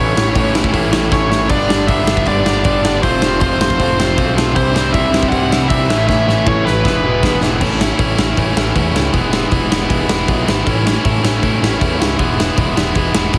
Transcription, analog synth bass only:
Already playing: A1
0.17 A1
0.36 A1
0.74 A1
1.12 A1
1.50 G1
1.70 G1
1.88 G1
2.27 G1
2.65 G1
3.03 F1
3.23 F1
3.41 F1
3.80 F1
4.18 B1
4.56 C2
4.75 C2
4.94 C2
5.32 C2
5.71 C2
5.89 A1
6.09 A1
6.28 A1
6.47 A1
6.85 E1
7.23 E1
7.61 A1
7.99 A1
8.17 A1
8.37 A1
8.56 A1
8.76 E2
8.94 C#2
9.14 E1
9.52 E1
9.70 E1
9.90 E1
10.10 E1
10.28 B1
10.48 G#1
10.67 A1
11.05 A1
11.23 A1
11.43 A1
11.62 A1
11.82 E2
12.00 C#2
12.20 E1
12.58 E1
12.77 E1
12.96 E1
13.15 E1
13.34 B1

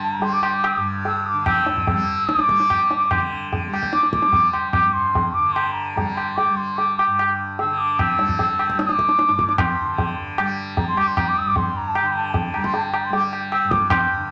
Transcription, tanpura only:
Already playing: G2 D3 G3
0.19 G3
0.76 G2
1.33 D3
1.91 G3
2.49 G3
3.11 D3
3.67 G3
4.24 G3
4.81 G2
5.38 D3
5.95 G3
6.50 G3
7.06 G2
7.62 D3
8.17 G3
8.72 G3
9.28 G2
9.83 D3
10.39 G3
10.93 G3
11.45 G2
12.02 D3
12.56 G3
13.10 G3
13.64 G2
14.17 D3

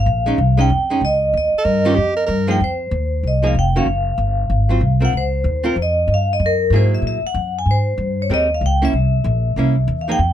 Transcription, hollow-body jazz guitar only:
0.26 G#3 C#4 D#4
0.57 G#3 C#4 D#4
0.90 G#3 C#4 D#4
1.85 D#3 C#4 F4 G4
2.47 F3 A#3 D#4 G#4
3.43 F3 A#3 D#4 G#4
3.76 D#3 A#3 C#4 F#4
4.69 F#3 C4 F4
5.01 C4 F4 A#4
5.64 C4 F4 A#4
6.72 F#3 A#3 E4 G#4
8.30 G#3 C4 G4 A#4
8.82 A#3 C#4 E4
9.57 A#3 C#4 E4
10.08 F3 A#3 D#4 G#4

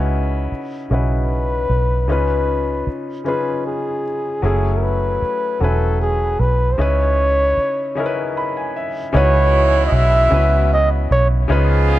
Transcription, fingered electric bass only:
Already playing: C#2
0.52 muted fingered electric bass stroke
0.91 B1
1.70 B1
2.09 C#2
2.87 muted fingered electric bass stroke
4.43 F#1
5.22 muted fingered electric bass stroke
5.61 E1
6.40 B1
6.79 C#2
7.57 muted fingered electric bass stroke
9.15 C#2
9.92 B1
10.32 C#2
11.11 B1
11.50 C#2

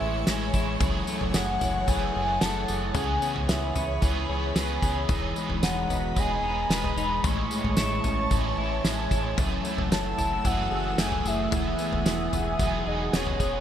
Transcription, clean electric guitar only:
Already playing: A2 E3 G#3 C#4
0.01 E4
0.27 G#3
0.55 E4
0.81 F#2
1.08 A3
1.35 G#4
1.61 E4
1.88 E3
2.15 G#4
2.42 A3
2.68 G#4
2.95 C#3
3.22 B3
3.49 G#4
3.76 C#4
4.02 E3
4.29 G#4
4.56 B3
4.83 G#4
5.09 E3
5.36 G#3
5.63 D#4
5.90 B3
6.17 G#3
6.44 D#4
6.70 G#3
6.97 D#4
7.24 A2
7.51 G#3
7.78 E4
8.04 C#4
8.31 E3
8.58 E4
8.85 G#3
9.12 E4
9.38 F#2
9.65 A3
10.18 E4
10.45 E3
10.71 G#4
10.98 A3
11.25 G#4
11.52 E3
11.79 B3
12.05 G#4
12.59 F#3
12.86 G#4
13.13 B3
13.40 G#4

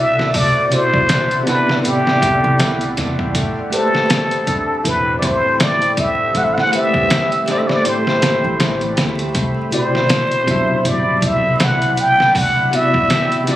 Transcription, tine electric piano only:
Already playing: B2 C3 E4 F#4 E5
0.70 B2 C3 E4 F#4 D5
1.43 C3 B3 E4
1.49 D5 F#5
3.70 A3 G4 B4 C5
6.71 A3 G4 B4 C5
7.44 A3 G4
7.49 A4 C5
9.71 B2 C3 E4 F#4 D5
10.44 B2 C3 E4
10.49 F#3 E5
12.71 C3 B3 E4 F#4 D5
13.44 C3 B3 E4
13.49 F#4 D5

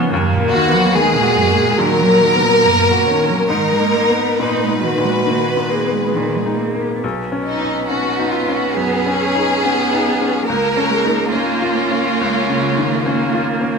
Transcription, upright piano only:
Already playing: C#2 C#3 D#3 C#4 F4
0.14 D#2
0.40 A#3
0.68 B3
0.95 A#3
1.22 F#4
1.50 A#3
1.79 A#2
2.06 A#3
2.35 B3
2.62 A#3
2.91 F#4
3.20 A#3
3.50 G#2
3.80 A#3
4.09 B3
4.39 A#2
4.69 D#4
4.98 A#2
5.27 D#3
5.57 A#2
5.87 B3
6.16 A#2
6.46 D#4
6.75 A#3
7.04 B1
7.32 C#4
7.62 D#4
7.90 C#4
8.19 D#4
8.49 C#4
8.77 F#2
9.06 C#4
9.35 D#4
9.65 C#4
9.93 D#4
10.21 C#4
10.49 C#2
10.77 C#4
11.05 D#4
11.33 C#4
11.62 F4
11.91 C#4
12.21 C#2
12.50 C#3
12.78 D#3
13.06 C#4
13.34 F4
13.61 C#4

